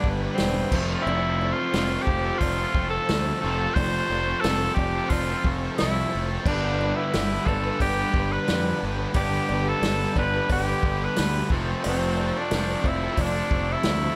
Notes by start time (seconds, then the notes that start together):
Already playing: G2 D3 G3 D4 B4
0.04 G1 G3 B3 D4, kick
0.08 B4
0.21 B3 D4 B4
0.34 G3 C4, snare, open hi-hat
0.39 E1 B3 D4 B4, cowbell
0.72 F1 F2 C3 F3 A3 C4 F4 A4, kick, crash
0.76 A4
0.90 C4 F4 A4
1.02 E4
1.06 F1 F3 A3 C4 F4 A4, cowbell
1.40 A3 C4 F4 A4, cowbell
1.52 F4
1.72 F1 F2 C3 F3 A3 C4 F4 A4, snare, open hi-hat, cowbell
1.77 F3
1.89 C4 F4 A4
2.02 G4
2.07 F1, muted distorted electric guitar stroke, kick
2.24 C4 F4 A4
2.39 F1 F4, kick, open hi-hat
2.43 cowbell
2.58 C4 F4 A4
2.74 F1 A3 C4 F4, kick
2.79 A4
2.90 F4 A4
2.95 C4
3.08 D2 F3 A3 C4 F4 A4, snare, open hi-hat, cowbell
3.41 F1 F2 C3 A3 C4 A4
3.45 F3 F4 A4
3.59 C4 F4 A4
3.74 F1 F3 A3 C5, kick, open hi-hat, cowbell
3.79 C4 F4 A4
4.09 F1 A3 C4 F4 A4, cowbell
4.40 F1 F3 A3 A4, snare, open hi-hat
4.45 F2 C3 F3 C4 F4 A4, cowbell
4.61 C4 F4 A4
4.74 F1 G4, kick
4.78 muted distorted electric guitar stroke, cowbell
4.95 C4 F4 A4
5.10 F1 F4, kick, open hi-hat, cowbell
5.28 C4 F4 A4
5.45 F1 A3 C4 F4 A4, kick
5.62 C4 F4 A4
5.78 C2 F3 A3 C4 E4 F4, snare, open hi-hat, cowbell
5.82 A4
6.12 F1 A3 C4 F4 A4
6.28 C4 F4 A4
6.44 G1 G2 D3 G3 B3 D4 B4, kick, crash, cowbell
6.50 G3
6.78 G3 B3 D4 B4, cowbell
6.96 E4
7.12 G1 G3 B3 D4 B4, snare, open hi-hat, cowbell
7.29 B3 D4 B4
7.46 G1 D3 G3 A4, muted distorted electric guitar stroke, kick, cowbell
7.51 G2
7.64 B3 D4 B4
7.80 G1 G4, kick, open hi-hat, cowbell
7.98 B3 D4 B4
8.13 G1 G3 B3 D4 B4, kick
8.29 B3 D4 B4
8.46 F2 G3 B3 D4 B4, snare, open hi-hat, cowbell
8.82 G1 G3 B3 D4 B4
8.98 B3 D4 B4
9.14 G1 G2 D3 G3 B3 D4 G4 B4, kick, open hi-hat, cowbell
9.18 G3
9.48 G1 G3 B3 D4, cowbell
9.52 B4
9.68 A4
9.82 G1 G3 B3 D4 B4, snare, open hi-hat, cowbell
9.99 B3 D4 B4
10.16 G1 G2 D3 G3 B4, muted distorted electric guitar stroke, kick, cowbell
10.34 B3 D4 B4
10.50 G1 G4, kick, open hi-hat, cowbell
10.67 B3 D4 B4
10.83 G1 G3 B3 D4 B4, kick
11.00 B3 D4 B4
11.04 B4
11.15 D2 G3 B3 D4 B4, snare, open hi-hat, cowbell
11.49 F1 F2 C3 F3 A3 C4 F4 A4, kick
11.53 F3 A4
11.66 C4 F4 A4
11.83 F1 F3 A3 C4 F4 A4, open hi-hat, cowbell
11.88 C4
12.17 A3 C4 F4, cowbell
12.21 A4
12.37 D4
12.51 F1 F2 C3 F3 A3 C4 F4 A4, snare, open hi-hat, cowbell
12.68 C4 F4 A4
12.84 F1 E4, muted distorted electric guitar stroke, kick, cowbell
13.03 C4 F4 A4
13.17 F1 D4, kick, open hi-hat, cowbell
13.35 C4 F4 A4
13.51 F1 A3 C4 F4 A4, kick
13.69 C4 E4 F4 A4
13.83 D2 F3 A3 C4, snare, open hi-hat, cowbell
13.87 F4 A4